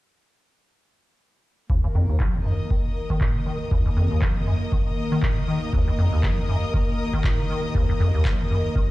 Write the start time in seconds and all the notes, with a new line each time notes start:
1.70 D#2 D#3 A#3 A#4, kick
1.84 D#2
1.89 A#4
1.95 F2
2.09 D#2
2.20 F#3, kick, clap
2.34 D#3 D#5
2.45 F#2
2.50 D#6
2.71 D#3, kick
3.10 D#3, kick
3.21 G#2, kick, clap
3.35 D#3
3.46 D#3
3.71 D#2, kick
3.86 D#2
3.97 F2
4.11 D#2
4.22 F#3, kick, clap
4.36 D#3
4.47 F#2
4.72 D#3, kick
5.12 D#3
5.22 G#2, kick, clap
5.37 D#3
5.48 D#3
5.73 D#2, kick
5.87 D#2
5.98 F2
6.13 D#2
6.23 F#3, kick, clap
6.38 D#3
6.49 F#2
6.74 D#3, kick
7.13 D#3, kick
7.24 G#2, kick, clap
7.39 D#3
7.50 D#3
7.75 D#2, kick
7.89 D#2
8.00 F2
8.14 D#2
8.25 F#3, kick, clap
8.39 D#3
8.50 F#2
8.76 D#3, kick